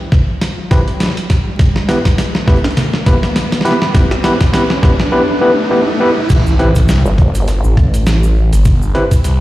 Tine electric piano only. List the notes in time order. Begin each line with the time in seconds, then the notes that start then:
0.71 C4 E4 G4 B4
1.89 B3 E4 G4 B4
2.47 B3 E4 G4 B4
3.06 B3 E4 G4 B4
3.65 B3 E4 G4 B4
3.94 B3 E4 G4 B4
4.24 B3 E4 G4 B4
4.53 B3 E4 G4 B4
4.83 B3 E4 G4 B4
5.12 B3 E4 G4 B4
5.41 B3 E4 G4 B4
5.71 B3 E4 G4 B4
6.00 B3 E4 G4 B4
6.59 C4 E4 G4 B4
8.95 C4 E4 G4 B4